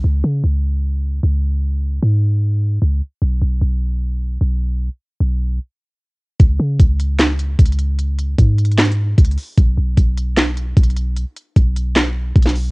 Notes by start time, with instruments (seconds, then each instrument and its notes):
0.04 808-style bass C#2
0.24 808-style bass C#3
0.44 808-style bass C#2
1.23 808-style bass C#2
2.03 808-style bass G#2
2.82 808-style bass C#2
3.22 808-style bass B1
3.42 808-style bass B1
3.62 808-style bass B1
4.41 808-style bass B1
5.20 808-style bass B1
6.40 808-style bass C#2, kick, closed hi-hat
6.60 808-style bass C#3
6.79 808-style bass C#2, kick, closed hi-hat
7.00 closed hi-hat
7.19 snare, clap, closed hi-hat
7.39 closed hi-hat
7.59 808-style bass C#2, kick, closed hi-hat
7.66 closed hi-hat
7.72 closed hi-hat
7.79 closed hi-hat
7.99 closed hi-hat
8.19 closed hi-hat
8.38 808-style bass G#2, kick, closed hi-hat
8.58 closed hi-hat
8.65 closed hi-hat
8.72 closed hi-hat
8.78 snare, clap, closed hi-hat
8.85 closed hi-hat
8.92 closed hi-hat
9.18 808-style bass C#2, kick, closed hi-hat
9.25 closed hi-hat
9.31 closed hi-hat
9.38 open hi-hat
9.58 808-style bass B1, kick, closed hi-hat
9.78 808-style bass B1
9.97 808-style bass B1, kick, closed hi-hat
10.18 closed hi-hat
10.37 snare, clap, closed hi-hat
10.57 closed hi-hat
10.77 808-style bass B1, kick, closed hi-hat
10.83 closed hi-hat
10.90 closed hi-hat
10.97 closed hi-hat
11.17 closed hi-hat
11.36 closed hi-hat
11.56 808-style bass B1, kick, closed hi-hat
11.76 closed hi-hat
11.96 snare, clap, closed hi-hat
12.36 808-style bass B1, kick, closed hi-hat
12.42 snare, closed hi-hat
12.49 closed hi-hat
12.55 open hi-hat